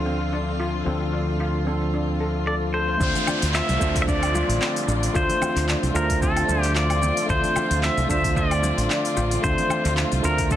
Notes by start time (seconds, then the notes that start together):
Already playing: D2 D3 F3 A3 C4 D4 F4 A4 F5 F6
0.06 C4
0.33 D4
0.60 F4
0.85 D2 F3 C4 D4 A4
1.13 D4
1.40 F4
1.65 F3 C4 D4 A4
1.94 D4
2.20 A4
2.47 A4 D5
2.74 A4 C5
2.88 C5
2.97 D2 D3 F3 A3 C4 D4 F4, kick, downlifter, shaker
3.01 F4 C5
3.15 open hi-hat, low conga, shaker
3.27 D4, low conga, low woodblock, shaker
3.42 D2, open hi-hat, shaker
3.54 F4 E5, clap, shaker
3.68 C2, open hi-hat, high conga, shaker
3.79 D2 A3 C4 D4 F4 C5, kick, shaker
3.96 kick, open hi-hat, shaker
4.02 E5
4.08 D4 D5, kick, shaker
4.23 open hi-hat, low woodblock, shaker
4.34 F4, high conga, shaker
4.49 A1, open hi-hat, shaker
4.61 C4, clap, shaker
4.76 open hi-hat, shaker
4.88 A1 D4, shaker
5.03 open hi-hat, shaker
5.13 D2 A3 D4 F4 C5, kick, shaker
5.29 open hi-hat, low conga, shaker
5.42 C4, low conga, low woodblock, shaker
5.56 D2, clap, open hi-hat, shaker
5.68 D4, clap, shaker
5.83 C2, open hi-hat, high conga, shaker
5.94 D2 A3 D4 F4 A#4 C5, shaker
6.10 kick, open hi-hat, shaker
6.22 C4 A4, kick, shaker
6.37 open hi-hat, low woodblock, shaker
6.46 D2 A3 D4, high conga, shaker
6.50 F4 C5
6.63 clap, open hi-hat, shaker
6.75 F4 D5, clap, shaker
6.90 open hi-hat, low woodblock, shaker
7.02 C4, low conga, shaker
7.17 open hi-hat, shaker
7.26 D2 A3 D4 C5, kick, shaker
7.30 F4 C5
7.43 open hi-hat, low conga, shaker
7.56 F4, low conga, low woodblock, shaker
7.70 D2, open hi-hat, shaker
7.83 C4 E5, clap, shaker
7.97 C2, open hi-hat, high conga, shaker
8.09 D2 A3 D4 F4 C5 E5, kick, shaker
8.24 kick, open hi-hat, shaker
8.36 F4 D5, kick, shaker
8.51 open hi-hat, low woodblock, shaker
8.63 C4, high conga, shaker
8.78 A1, open hi-hat, shaker
8.90 D4, clap, shaker
9.05 open hi-hat, shaker
9.17 A1 F4, shaker
9.31 open hi-hat, shaker
9.42 D2 A3 C4 D4 F4 C5, kick, shaker
9.58 open hi-hat, low conga, shaker
9.70 D4, low conga, low woodblock, shaker
9.85 D2, clap, open hi-hat, shaker
9.97 F4, clap, shaker
10.12 C2, open hi-hat, high conga, shaker
10.22 D2 A3 C4 D4 F4 A#4 C5, shaker
10.38 kick, open hi-hat, shaker
10.51 D4 A4, kick, shaker